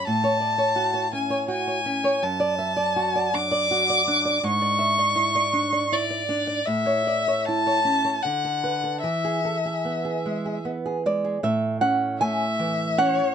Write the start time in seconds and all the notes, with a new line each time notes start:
0.07 A2 A5
0.24 C#5
0.40 D5
0.58 C#5
0.76 F#4
0.94 C#5
1.13 C#4 G#5
1.30 C#5
1.48 F#4 G#5
1.67 C#5
1.86 C#4
2.04 C#5
2.23 F#2 A5
2.40 D5
2.59 E5
2.77 D5
2.96 F#4
3.15 D5
3.34 D4 D6
3.51 D5
3.71 F#4
3.90 D5
4.08 D4
4.25 D5
4.43 G#2 C#6
4.62 D5
4.79 E5
4.98 D5
5.16 E4
5.35 D5
5.53 D4
5.73 D5
5.92 E4 D5
6.10 D5
6.29 D4
6.47 D5
6.66 A2 E5
6.86 C#5
7.07 D5
7.28 C#5
7.45 E4 A5
7.67 C#5
7.85 C#4
8.05 C#5
8.22 D3 F#5
8.45 A4
8.64 B4
8.84 A4
9.03 E3 E5
9.25 G#4
9.45 A4
9.65 G#4
9.85 B3
10.05 G#4
10.26 G#3
10.46 G#4
10.65 B3
10.86 G#4
11.06 G#3 D5
11.24 G#4
11.43 A2 E5
11.81 C#4 F#5
12.21 A3 E5 G#5
12.60 E3
12.98 C#4 C#5 F#5